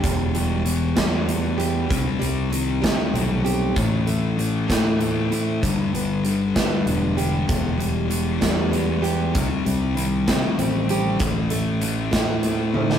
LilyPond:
<<
  \new Staff \with { instrumentName = "Steel-string acoustic guitar" } { \clef bass \time 6/8 \key e \minor \tempo 4. = 64 e,8 g8 e8 g8 b8 g'8 | c8 g8 ees8 g8 c'8 g'8 | a,8 a8 e8 a8 c'8 e'8 | g,8 b8 g8 b8 d'8 g'8 |
e,8 g8 e8 g8 b8 g'8 | c8 g8 ees8 g8 c'8 g'8 | a,8 a8 e8 a8 c'8 e'8 | }
  \new Staff \with { instrumentName = "Distorted electric guitar" } { \clef bass \time 6/8 \key e \minor <e, b, e>8 <e, b, e>8 <e, b, e>8 <e, b, e>8 <e, b, e>8 <e, b, e>8 | <c g c'>8 <c g c'>8 <c g c'>8 <c g c'>8 <c g c'>8 <c g c'>8 | <a, e a>8 <a, e a>8 <a, e a>8 <a, e a>8 <a, e a>8 <a, e a>8 | <g, d g>8 <g, d g>8 <g, d g>8 <g, d g>8 <g, d g>8 <g, d g>8 |
<e, b, e>8 <e, b, e>8 <e, b, e>8 <e, b, e>8 <e, b, e>8 <e, b, e>8 | <c g c'>8 <c g c'>8 <c g c'>8 <c g c'>8 <c g c'>8 <c g c'>8 | <a, e a>8 <a, e a>8 <a, e a>8 <a, e a>8 <a, e a>8 <a, e a>8 | }
  \new Staff \with { instrumentName = "Fingered electric bass" } { \clef bass \time 6/8 \key e \minor e,,4. e,4. | c,16 r16 c,4 c16 r16 b,,4 | a,,4. a,4. | g,,16 r16 g,,4 g,16 r16 e,,4 |
e,,4. e,4. | c,16 r16 c,4 c16 r16 a,,4 | a,,4. a,4. | }
  \new DrumStaff \with { instrumentName = "Drums" } \drummode { \time 6/8 <hh bd>8 hh8 hh8 <hh bd sn>8 hh8 hh8 | <hh bd>8 hh8 hh8 <hh bd sn>8 hh8 hh8 | <hh bd>8 hh8 hh8 <hh bd sn>8 hh8 hh8 | <hh bd>8 hh8 hh8 <hh bd sn>8 hh8 hh8 |
<hh bd>8 hh8 hh8 <hh bd sn>8 hh8 hh8 | <hh bd>8 hh8 hh8 <hh bd sn>8 hh8 hh8 | <hh bd>8 hh8 hh8 <hh bd sn>8 hh8 tommh16 sn16 | }
>>